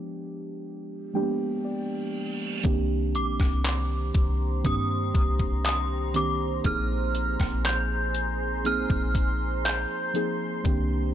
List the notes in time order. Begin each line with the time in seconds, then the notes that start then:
Already playing: F3 G#3 B3 D4 G4
0.65 reverse cymbal
1.14 F3 G#3 A#3 D4 G4 G5
1.22 B3
1.65 D5
2.63 C2 D#3 A#3 C4 D4 G4 C5 A#5 C6, kick, closed hi-hat
3.15 A#1 D6, closed hi-hat
3.40 C2, kick, cross-stick
3.65 clap, closed hi-hat
4.14 C2, kick, closed hi-hat
4.64 G2 D#3 A#3 C4 D4 G4 D#6, kick, closed hi-hat
5.15 C2, kick, closed hi-hat
5.40 kick
5.65 D#6, clap, closed hi-hat
6.14 D#3 A#3 C4 D4 G4 D6, closed hi-hat
6.64 A#1 F3 A#3 C4 D#4 G#4 C6 F6, kick, closed hi-hat
7.15 closed hi-hat
7.40 A#1, kick, cross-stick
7.65 G6, clap, closed hi-hat
8.15 closed hi-hat
8.64 F3 A#3 C4 D#4 G#4 F6, closed hi-hat
8.90 A#1, kick
9.15 kick, closed hi-hat
9.65 G6, clap, closed hi-hat
10.14 F3 A#3 C4 D#4 G#4, closed hi-hat
10.64 C2 D#3 A#3 C4 D4 G4 A#5, kick, closed hi-hat